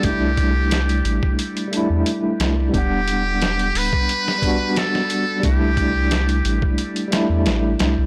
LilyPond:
<<
  \new Staff \with { instrumentName = "Muted trumpet" } { \time 4/4 \key c \lydian \tempo 4 = 89 g'2 r2 | g'4. b'4. a'4 | g'2 r2 | }
  \new Staff \with { instrumentName = "Tine electric piano" } { \time 4/4 \key c \lydian <g a d' e'>2~ <g a d' e'>8 <g a d' e'>4. | <g b d' fis''>2~ <g b d' fis''>8 <g b d' fis'>4. | <g a d' e'>2~ <g a d' e'>8 <g a d' e'>4. | }
  \new Staff \with { instrumentName = "Sub bass" } { \clef bass \time 4/4 \key c \lydian c,4. a,,16 r4 e,16 r8 c,8 | e,,4. d,,16 r2 r16 | c,4. a,,16 r4 e,16 a,,8 c,16 c,16 | }
  \new DrumStaff \with { instrumentName = "Drums" } \drummode { \time 4/4 <hh bd>8 <hh bd>8 <hh sn>16 hh16 hh16 bd16 hh16 hh16 hh8 hh8 <hh sn>8 | <hh bd>8 hh8 <hh sn>16 hh16 hho16 bd16 hh16 sn16 <hh bd>8 <hh sn>16 sn16 hh8 | <hh bd>8 <hh bd>8 <hh sn>16 hh16 hh16 bd16 hh16 hh16 <hh sn>8 <hh sn>8 <hh sn>8 | }
>>